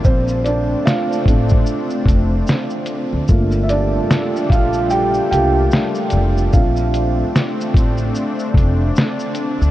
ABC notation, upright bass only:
X:1
M:4/4
L:1/16
Q:"Swing 16ths" 1/4=74
K:Bb
V:1 name="Upright bass" clef=bass
B,,,4 z2 A,,,2 z2 F,,,2 z3 D,, | G,,,4 z2 B,,,4 C,,2 z2 F,,,2 | B,,,4 z2 A,,,2 z2 F,,,2 z3 D,, |]